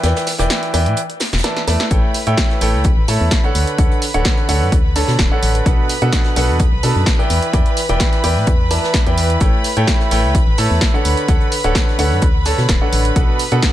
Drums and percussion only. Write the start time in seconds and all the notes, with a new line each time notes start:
0.03 snare, closed hi-hat
0.16 snare, closed hi-hat
0.27 snare, closed hi-hat, open hi-hat
0.39 snare, closed hi-hat
0.50 snare, closed hi-hat
0.63 snare, closed hi-hat
0.74 closed hi-hat, open hi-hat
0.86 closed hi-hat
0.97 closed hi-hat
1.10 closed hi-hat
1.20 snare, closed hi-hat, open hi-hat
1.33 snare, closed hi-hat
1.38 snare, closed hi-hat
1.44 snare, closed hi-hat
1.57 snare, closed hi-hat
1.68 snare, closed hi-hat, open hi-hat
1.80 snare, closed hi-hat
1.90 kick, closed hi-hat
2.14 closed hi-hat, open hi-hat
2.27 closed hi-hat
2.37 kick, snare, closed hi-hat
2.50 snare
2.61 snare, closed hi-hat, open hi-hat
2.84 kick, closed hi-hat
3.08 closed hi-hat, open hi-hat
3.31 kick, snare, closed hi-hat
3.43 closed hi-hat
3.55 closed hi-hat, open hi-hat
3.67 closed hi-hat
3.78 kick, closed hi-hat
3.91 closed hi-hat
4.02 closed hi-hat, open hi-hat
4.14 closed hi-hat
4.25 kick, snare, closed hi-hat
4.37 snare
4.49 closed hi-hat, open hi-hat
4.72 kick, closed hi-hat
4.96 closed hi-hat, open hi-hat
5.08 snare
5.19 kick, snare, closed hi-hat
5.43 closed hi-hat, open hi-hat
5.55 closed hi-hat
5.66 kick, closed hi-hat
5.89 closed hi-hat, open hi-hat
6.02 closed hi-hat
6.13 kick, snare, closed hi-hat
6.24 snare
6.36 snare, closed hi-hat, open hi-hat
6.59 kick, closed hi-hat
6.83 closed hi-hat, open hi-hat
7.06 kick, snare, closed hi-hat
7.19 closed hi-hat
7.30 closed hi-hat, open hi-hat
7.42 closed hi-hat
7.53 kick, closed hi-hat
7.66 closed hi-hat
7.77 closed hi-hat, open hi-hat
7.89 closed hi-hat
8.00 kick, snare, closed hi-hat
8.12 snare, closed hi-hat
8.24 closed hi-hat, open hi-hat
8.47 kick, closed hi-hat
8.71 closed hi-hat, open hi-hat
8.84 snare
8.94 kick, snare, closed hi-hat
9.06 closed hi-hat
9.17 closed hi-hat, open hi-hat
9.30 closed hi-hat
9.40 kick, closed hi-hat
9.64 closed hi-hat, open hi-hat
9.77 closed hi-hat
9.87 kick, snare, closed hi-hat
10.00 snare
10.11 snare, closed hi-hat, open hi-hat
10.35 kick, closed hi-hat
10.58 closed hi-hat, open hi-hat
10.81 kick, snare, closed hi-hat
10.94 closed hi-hat
11.05 closed hi-hat, open hi-hat
11.17 closed hi-hat
11.28 kick, closed hi-hat
11.40 closed hi-hat
11.52 closed hi-hat, open hi-hat
11.64 closed hi-hat
11.75 kick, snare, closed hi-hat
11.88 snare
11.99 closed hi-hat, open hi-hat
12.22 kick, closed hi-hat
12.45 closed hi-hat, open hi-hat
12.58 snare
12.69 kick, snare, closed hi-hat
12.93 closed hi-hat, open hi-hat
13.05 closed hi-hat
13.16 kick, closed hi-hat
13.39 closed hi-hat, open hi-hat
13.52 closed hi-hat
13.62 kick, snare, closed hi-hat